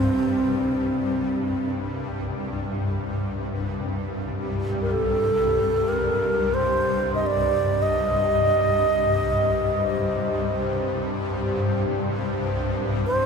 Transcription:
Already playing: ambient pad C2 G2, alto flute C4
3.74 ambient pad C2 G2
4.18 glass harmonica G4
4.82 alto flute A#4
4.92 alto flute A4
5.88 alto flute A#4
6.54 alto flute C5
7.15 alto flute D#5
7.27 alto flute D5
7.82 alto flute D#5
9.56 glass harmonica C5
13.07 alto flute C5

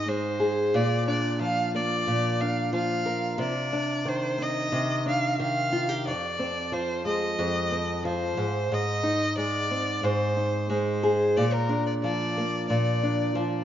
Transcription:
Already playing: nylon-string guitar G#2 C4 D#4, violin D#5
0.08 nylon-string guitar G#3, violin C5
0.40 nylon-string guitar G#4
0.74 nylon-string guitar A#2, violin D5
1.08 nylon-string guitar D4, violin D5
1.41 nylon-string guitar F3, violin F5
1.75 nylon-string guitar A#3, violin D5
2.07 nylon-string guitar A#2
2.41 nylon-string guitar D4, violin F5
2.73 nylon-string guitar F3, violin F5
3.06 nylon-string guitar A#4
3.38 nylon-string guitar C3, violin D5
3.73 nylon-string guitar D4
4.05 nylon-string guitar D#3, violin C5
4.38 nylon-string guitar C4
4.43 violin D#5
4.72 nylon-string guitar C3
5.06 nylon-string guitar D4, violin F5
5.39 nylon-string guitar D#3, violin F5
5.72 nylon-string guitar F4
5.89 nylon-string guitar G4
6.07 nylon-string guitar F2, violin D5
6.39 nylon-string guitar C4
6.72 nylon-string guitar F3, violin C5
7.05 nylon-string guitar G#3, violin D#5
7.39 nylon-string guitar F2
7.72 nylon-string guitar C4
8.05 nylon-string guitar F3, violin C5
8.37 nylon-string guitar G#2
8.72 nylon-string guitar G#2, violin D#5
9.03 nylon-string guitar D#4
9.37 nylon-string guitar G#3, violin D5
9.71 nylon-string guitar C4
10.03 nylon-string guitar G#2, violin C5
10.37 nylon-string guitar D#4
10.70 nylon-string guitar G#3, violin C5
11.03 nylon-string guitar G#4
11.37 nylon-string guitar A#2, violin D5
11.53 violin A#4
11.69 nylon-string guitar D4
11.87 violin D5
12.03 nylon-string guitar F3, violin D5
12.37 nylon-string guitar A#3
12.69 nylon-string guitar A#2, violin D5
13.03 nylon-string guitar D4
13.35 nylon-string guitar F3

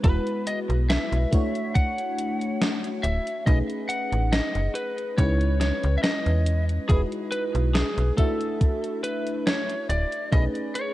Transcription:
0.03 fm bass E1, fm electric piano G#3 B3 E4 F#4 B4, lead electric guitar B4, kick, closed hi-hat
0.27 closed hi-hat
0.47 lead electric guitar D#5, closed hi-hat
0.69 fm bass B1, closed hi-hat
0.90 lead electric guitar E5, snare, closed hi-hat
1.12 fm bass B1, closed hi-hat
1.31 fm electric piano A3 D4 E4 F#4 C#5, kick, closed hi-hat
1.55 closed hi-hat
1.75 lead electric guitar F#5, kick, closed hi-hat
1.98 closed hi-hat
2.18 closed hi-hat
2.41 closed hi-hat
2.62 snare, closed hi-hat
2.84 closed hi-hat
3.03 fm bass D1, lead electric guitar E5, closed hi-hat
3.27 closed hi-hat
3.45 fm bass B1, fm electric piano A3 C#4 D#4 G#4 B4, lead electric guitar D#5, kick, closed hi-hat
3.70 closed hi-hat
3.89 lead electric guitar F#5, closed hi-hat
4.12 fm bass A1, closed hi-hat
4.32 lead electric guitar D#5, snare, closed hi-hat
4.55 fm bass F#1, closed hi-hat
4.75 lead electric guitar B4, closed hi-hat
4.98 closed hi-hat
5.17 fm bass C#2, fm electric piano G#3 C#4 D#4 E4 B4, lead electric guitar C#5, kick, closed hi-hat
5.41 closed hi-hat
5.61 lead electric guitar C#5, snare, closed hi-hat
5.84 fm bass C#2, closed hi-hat
5.98 lead electric guitar E5
6.03 lead electric guitar D#5, snare, closed hi-hat
6.26 fm bass E2, closed hi-hat
6.46 closed hi-hat
6.69 closed hi-hat
6.88 fm bass E1, fm electric piano G#3 D#4 E4 F#4 B4, lead electric guitar G#4, kick, closed hi-hat
7.12 closed hi-hat
7.32 lead electric guitar B4, closed hi-hat
7.55 fm bass B1, closed hi-hat
7.74 lead electric guitar G#4, snare, closed hi-hat
7.98 fm bass B1, closed hi-hat
8.17 fm electric piano A3 D4 E4 F#4 E5, lead electric guitar A4, kick, closed hi-hat
8.41 closed hi-hat
8.61 kick, closed hi-hat
8.84 closed hi-hat
9.03 lead electric guitar B4, closed hi-hat
9.27 closed hi-hat
9.47 lead electric guitar C#5, snare, closed hi-hat
9.69 closed hi-hat
9.89 fm bass D1, lead electric guitar D5, closed hi-hat
10.12 closed hi-hat
10.31 fm bass B1, fm electric piano A3 C#4 D#4 G#4 B4, lead electric guitar D#5, kick, closed hi-hat
10.55 closed hi-hat
10.75 lead electric guitar C#5, closed hi-hat

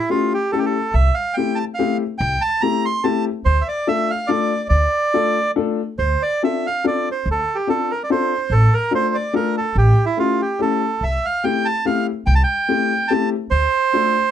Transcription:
0.09 upright piano A3 C#4 E4 G4, bandoneon F4
0.34 bandoneon G4
0.52 upright piano A3 C#4 E4 G4, bandoneon A4
0.59 bandoneon G4
0.66 bandoneon A4
0.94 upright bass C2, bandoneon E5
1.14 bandoneon F5
1.34 upright piano A3 C4 E4 G4, bandoneon G5
1.55 bandoneon A5
1.74 bandoneon F5
1.79 upright piano A3 C4 E4 G4
2.18 upright bass C2, bandoneon G5
2.41 bandoneon A5
2.61 upright piano A3 C4 E4 G4, bandoneon A#5
2.85 bandoneon C6
3.04 upright piano A3 C4 E4 G4, bandoneon A5
3.45 upright bass D2, bandoneon C5
3.61 bandoneon E5
3.68 bandoneon D5
3.87 upright piano A3 D4 F4 A4, bandoneon E5
4.10 bandoneon F5
4.27 upright piano A3 D4 F4 A4, bandoneon D5
4.69 upright bass D2, bandoneon D5
5.14 upright piano A3 D4 F4 A4
5.56 upright piano A3 D4 F4 A4
5.99 upright bass D2, bandoneon C5
6.22 bandoneon D5
6.43 upright piano C4 D4 F4 A4, bandoneon E5
6.67 bandoneon F5
6.84 upright piano C4 D4 F4 A4, bandoneon D5
7.11 bandoneon C5
7.26 upright bass D2
7.31 bandoneon A4
7.55 bandoneon G4
7.67 upright piano C4 D4 F4 A4, bandoneon A4
7.91 bandoneon A#4
8.04 bandoneon D5
8.10 upright piano C4 D4 F4 A4, bandoneon C5
8.50 upright bass A1, bandoneon A4
8.74 bandoneon A#4
8.91 upright piano A3 D4 F4 A4, bandoneon C5
9.15 bandoneon D5
9.33 upright piano A3 D4 F4 A4, bandoneon A#4
9.57 bandoneon A4
9.75 upright bass A1, bandoneon G4
10.06 bandoneon E4
10.17 upright piano A3 C#4 E4 G4, bandoneon F4
10.42 bandoneon G4
10.59 upright piano A3 C#4 E4 G4, bandoneon A4
11.01 upright bass C2, bandoneon E5
11.25 bandoneon F5
11.44 upright piano A3 C4 E4 G4, bandoneon G5
11.65 bandoneon A5
11.85 upright piano A3 C4 E4 G4, bandoneon F5
12.26 upright bass C2, bandoneon G5
12.35 bandoneon A5
12.44 bandoneon G5
12.68 upright piano A3 C4 E4 G4
13.08 upright piano A3 C4 E4 G4, bandoneon A5
13.51 upright bass D2, bandoneon C5
13.93 upright piano A3 D4 F4 A4

